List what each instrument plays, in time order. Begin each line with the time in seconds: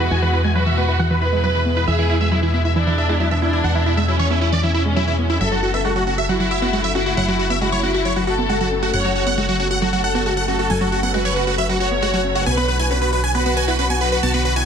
Already playing: violin section F#4
0.00 synth pluck E4, supersaw synth B4
0.11 fm bass E2, analog synth pad B2 E3 G#3 E4, synth pluck E3, supersaw synth G#5
0.22 analog synth pad B2 E3 G#3 E4, synth pluck E3, supersaw synth B4
0.33 synth pluck E4, supersaw synth B4
0.44 analog synth pad B2 E3 G#3 E4, synth pluck G#3, supersaw synth G#5
0.55 analog synth pad B2 E3 G#3 E4, synth pluck F#3, violin section F#4, supersaw synth B4
0.66 analog synth pad B2 E3 G#3 E4, synth pluck E3, supersaw synth E5
0.77 synth pluck B3, supersaw synth B4
0.88 synth pluck E4, supersaw synth B4
0.99 synth pluck E3, supersaw synth F#5
1.10 analog synth pad B2 E3 G#3 E4, synth pluck E3, supersaw synth B4
1.21 synth pluck E4, violin section B4, supersaw synth B4
1.32 analog synth pad B2 E3 G#3 E4, synth pluck G#3
1.44 analog synth pad B2 E3 G#3 E4, synth pluck F#3, supersaw synth B4
1.55 synth pluck E3, supersaw synth B4
1.66 analog synth pad B2 E3 G#3 E4, synth pluck B3
1.77 synth pluck E4, supersaw synth B4
1.88 fm bass E2, analog synth pad B2 E3 G#3 E4, synth pluck E3, violin section G#4, supersaw synth E5
1.99 analog synth pad B2 E3 G#3 E4, synth pluck E3, supersaw synth E4
2.10 supersaw synth E4, synth pluck E4
2.21 analog synth pad B2 E3 G#3 E4, synth pluck G#3, supersaw synth E5
2.32 analog synth pad B2 E3 G#3 E4, synth pluck F#3, supersaw synth E4
2.43 analog synth pad B2 E3 G#3 E4, synth pluck E3, supersaw synth E4
2.54 synth pluck B3, supersaw synth E4
2.65 synth pluck E4, supersaw synth E5
2.76 synth pluck E3, violin section D4, supersaw synth E4
2.87 analog synth pad B2 E3 G#3 E4, synth pluck E3, supersaw synth E4
2.98 synth pluck E4, supersaw synth E5
3.09 analog synth pad B2 E3 G#3 E4, synth pluck G#3, supersaw synth E4
3.20 analog synth pad B2 E3 G#3 E4, synth pluck F#3, supersaw synth E4
3.31 synth pluck E3, supersaw synth E5
3.42 analog synth pad B2 E3 G#3 E4, synth pluck B3, violin section D4, supersaw synth E4
3.53 synth pluck E4, supersaw synth E4
3.64 fm bass E2, analog synth pad B2 E3 G#3 E4, synth pluck E3, supersaw synth F#5
3.75 analog synth pad B2 E3 G#3 E4, synth pluck E3, supersaw synth E4
3.86 synth pluck E4, supersaw synth E4
3.97 analog synth pad B2 E3 G#3 E4, synth pluck G#3, supersaw synth E5
4.08 analog synth pad B2 E3 G#3 E4, synth pluck F#3, violin section C#4, supersaw synth E4
4.19 analog synth pad B2 E3 G#3 E4, synth pluck E3, supersaw synth C#5
4.30 synth pluck B3, supersaw synth E4
4.41 supersaw synth E4, synth pluck E4
4.52 synth pluck E3, supersaw synth D5
4.63 analog synth pad B2 E3 G#3 E4, synth pluck E3, supersaw synth E4
4.74 violin section C#4, synth pluck E4, supersaw synth E4
4.85 analog synth pad B2 E3 G#3 E4, synth pluck G#3
4.96 analog synth pad B2 E3 G#3 E4, synth pluck F#3, supersaw synth E4
5.08 synth pluck E3, supersaw synth E4
5.18 analog synth pad B2 E3 G#3 E4, synth pluck B3
5.30 synth pluck E4, supersaw synth E4
5.41 fm bass F#1, analog synth pad C#3 F#3 A3 F#4, synth pluck F#3, violin section A4, supersaw synth E5
5.52 analog synth pad C#3 F#3 A3 F#4, synth pluck F#3, supersaw synth F#4
5.63 synth pluck F#4, supersaw synth F#4
5.74 analog synth pad C#3 F#3 A3 F#4, synth pluck B3, supersaw synth E5
5.85 analog synth pad C#3 F#3 A3 F#4, synth pluck G#3, supersaw synth F#4
5.96 analog synth pad C#3 F#3 A3 F#4, synth pluck F#3, supersaw synth F#4
6.07 synth pluck C#4, supersaw synth F#4
6.18 synth pluck F#4, supersaw synth E5
6.29 synth pluck F#3, violin section E4, supersaw synth F#4
6.40 analog synth pad C#3 F#3 A3 F#4, synth pluck F#3, supersaw synth F#4
6.51 synth pluck F#4, supersaw synth E5
6.62 analog synth pad C#3 F#3 A3 F#4, synth pluck B3, supersaw synth F#4
6.73 analog synth pad C#3 F#3 A3 F#4, synth pluck G#3, supersaw synth F#4
6.84 synth pluck F#3, supersaw synth E5
6.95 analog synth pad C#3 F#3 A3 F#4, synth pluck C#4, violin section E4, supersaw synth F#4
7.06 synth pluck F#4, supersaw synth F#4
7.17 fm bass F#1, analog synth pad C#3 F#3 A3 F#4, synth pluck F#3, supersaw synth F#5
7.28 analog synth pad C#3 F#3 A3 F#4, synth pluck F#3, supersaw synth F#4
7.39 synth pluck F#4, supersaw synth F#4
7.50 analog synth pad C#3 F#3 A3 F#4, synth pluck B3, supersaw synth E5
7.61 analog synth pad C#3 F#3 A3 F#4, synth pluck G#3, violin section E4, supersaw synth F#4
7.72 analog synth pad C#3 F#3 A3 F#4, synth pluck F#3, supersaw synth C#5
7.83 synth pluck C#4, supersaw synth F#4
7.94 synth pluck F#4, supersaw synth F#4
8.05 synth pluck F#3, supersaw synth C#5
8.16 analog synth pad C#3 F#3 A3 F#4, synth pluck F#3, supersaw synth F#4
8.27 supersaw synth F#4, synth pluck F#4, violin section A4
8.38 analog synth pad C#3 F#3 A3 F#4, synth pluck B3
8.49 analog synth pad C#3 F#3 A3 F#4, synth pluck G#3, supersaw synth F#4
8.60 synth pluck F#3, supersaw synth F#4
8.72 analog synth pad C#3 F#3 A3 F#4, synth pluck C#4
8.83 supersaw synth F#4, synth pluck F#4
8.94 fm bass F#1, analog synth pad C#3 F#3 A3 F#4, synth pluck F#3, violin section C#5, supersaw synth F#5
9.05 analog synth pad C#3 F#3 A3 F#4, synth pluck F#3, supersaw synth F#4
9.15 supersaw synth F#4, synth pluck F#4
9.27 analog synth pad C#3 F#3 A3 F#4, synth pluck B3, supersaw synth F#5
9.38 analog synth pad C#3 F#3 A3 F#4, synth pluck G#3, supersaw synth F#4
9.49 analog synth pad C#3 F#3 A3 F#4, synth pluck F#3, supersaw synth F#4
9.60 synth pluck C#4, supersaw synth F#4
9.71 synth pluck F#4, supersaw synth F#5
9.82 synth pluck F#3, supersaw synth F#4, violin section A4
9.93 analog synth pad C#3 F#3 A3 F#4, synth pluck F#3, supersaw synth F#4
10.04 synth pluck F#4, supersaw synth F#5
10.15 analog synth pad C#3 F#3 A3 F#4, synth pluck B3, supersaw synth F#4
10.26 analog synth pad C#3 F#3 A3 F#4, synth pluck G#3, supersaw synth F#4
10.37 synth pluck F#3, supersaw synth F#5
10.48 analog synth pad C#3 F#3 A3 F#4, synth pluck C#4, supersaw synth F#4, violin section A4
10.59 supersaw synth F#4, synth pluck F#4
10.70 fm bass F#1, analog synth pad C#3 F#3 A3 F#4, synth pluck F#3, supersaw synth G#5
10.81 analog synth pad C#3 F#3 A3 F#4, synth pluck F#3, supersaw synth F#4
10.92 synth pluck F#4, supersaw synth F#4
11.03 analog synth pad C#3 F#3 A3 F#4, synth pluck B3, supersaw synth F#5
11.14 analog synth pad C#3 F#3 A3 F#4, synth pluck G#3, supersaw synth F#4, violin section B4
11.25 analog synth pad C#3 F#3 A3 F#4, synth pluck F#3, supersaw synth C#5
11.36 synth pluck C#4, supersaw synth F#4
11.47 supersaw synth F#4, synth pluck F#4
11.58 synth pluck F#3, supersaw synth E5
11.69 analog synth pad C#3 F#3 A3 F#4, synth pluck F#3, supersaw synth F#4
11.80 synth pluck F#4, supersaw synth F#4, violin section C#5
11.91 analog synth pad C#3 F#3 A3 F#4, synth pluck B3
12.02 analog synth pad C#3 F#3 A3 F#4, synth pluck G#3, supersaw synth F#4
12.13 synth pluck F#3, supersaw synth F#4
12.24 analog synth pad C#3 F#3 A3 F#4, synth pluck C#4
12.35 supersaw synth F#4, synth pluck F#4
12.46 fm bass B1, analog synth pad D3 F#3 B3 F#4, synth pluck B3, violin section B4, supersaw synth G#5
12.57 analog synth pad D3 F#3 B3 F#4, synth pluck B3, supersaw synth B4
12.68 supersaw synth B4, synth pluck B4
12.79 analog synth pad D3 F#3 B3 F#4, synth pluck E4, supersaw synth G#5
12.91 analog synth pad D3 F#3 B3 F#4, synth pluck C#4, supersaw synth B4
13.02 analog synth pad D3 F#3 B3 F#4, synth pluck B3, supersaw synth B4
13.13 synth pluck F#4, supersaw synth B4
13.24 synth pluck B4, supersaw synth G#5
13.35 synth pluck B3, violin section F#4, supersaw synth B4
13.46 analog synth pad D3 F#3 B3 F#4, synth pluck B3, supersaw synth B4
13.57 synth pluck B4, supersaw synth G#5
13.68 analog synth pad D3 F#3 B3 F#4, synth pluck E4, supersaw synth B4
13.79 analog synth pad D3 F#3 B3 F#4, synth pluck C#4, supersaw synth B4
13.90 synth pluck B3, supersaw synth G#5
14.01 analog synth pad D3 F#3 B3 F#4, violin section F#4, synth pluck F#4, supersaw synth B4
14.12 synth pluck B4, supersaw synth B4
14.23 fm bass B1, analog synth pad D3 F#3 B3 F#4, synth pluck B3, supersaw synth A5
14.34 analog synth pad D3 F#3 B3 F#4, synth pluck B3, supersaw synth B4
14.45 supersaw synth B4, synth pluck B4
14.56 analog synth pad D3 F#3 B3 F#4, synth pluck E4, supersaw synth G#5